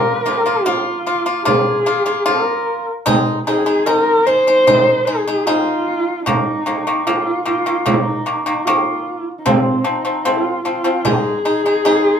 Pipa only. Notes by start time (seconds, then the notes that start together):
Already playing: A#3 F4
0.26 A#3 F4
0.46 A#3 F4
0.66 A#3 F4
1.06 A#3 F4
1.26 A#3 F4
1.45 A#3 F4
1.86 A#3 F4
2.06 A#3 F4
2.26 A#3 F4
3.06 G#3 D#4
3.47 G#3 D#4
3.66 G#3 D#4
3.86 G#3 D#4
4.27 G#3 D#4
4.47 G#3 D#4
4.67 G#3 D#4
5.07 G#3 D#4
5.27 G#3 D#4
5.47 G#3 D#4
6.26 D#3 A#3
6.66 D#3 A#3
6.87 D#3 A#3
7.07 D#3 A#3
7.46 D#3 A#3
7.66 D#3 A#3
7.86 D#3 A#3
8.26 D#3 A#3
8.46 D#3 A#3
8.67 D#3 A#3
9.46 F3 C4
9.84 F3 C4
10.05 F3 C4
10.25 F3 C4
10.65 F3 C4
10.84 F3 C4
11.05 G#3 D#4
11.45 G#3 D#4
11.66 G#3 D#4
11.85 G#3 D#4